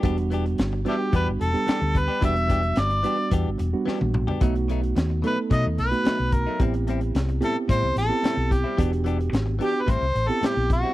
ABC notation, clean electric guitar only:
X:1
M:4/4
L:1/16
Q:1/4=110
K:Em
V:1 name="Clean electric guitar"
[E,B,DG] z [E,B,DG] z3 [E,B,DG] z [E,B,DG] z3 [E,B,DG] z2 [B,DG] | [E,B,DG] z [E,B,DG] z3 [E,B,DG] z [E,B,DG] z3 [E,B,DG] z2 [B,DG] | [B,,F,A,^D] z [B,,F,A,D] z3 [B,,F,A,D] z [B,,F,A,D] z3 [B,,F,A,D] z2 [F,A,D] | [A,,G,CE] z [A,,G,CE] z3 [A,,G,CE] z [A,,G,CE] z3 [A,,G,CE] z2 [G,CE] |
[E,B,DG] z [E,B,DG] z3 [E,B,DG] z [A,,G,CE] z3 [A,,G,CE] z2 [G,CE] |]